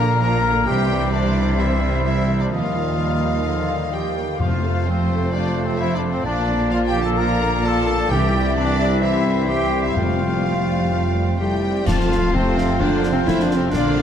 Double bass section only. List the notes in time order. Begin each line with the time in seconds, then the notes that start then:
Already playing: A#1
0.67 C2
2.51 D#2
4.40 F1
6.27 A#1
8.11 C2
9.96 F1
11.88 F2
13.73 A#1